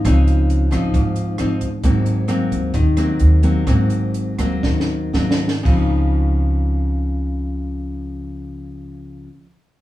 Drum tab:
CC |------------------------|------------------------|------------------------|x-----------------------|
HH |x--x--x--x--x--x--x--x--|x--x--x--x--x--x--x--x--|x--x--x--x--------------|------------------------|
SD |r--------r--------r-----|------r--------r--------|r--------r--o-o---o-o-o-|------------------------|
BD |o--------o--o--------o--|o--------o--o--------o--|o--------o--o-----------|o-----------------------|

CC |------------------------|
HH |------------------------|
SD |------------------------|
BD |------------------------|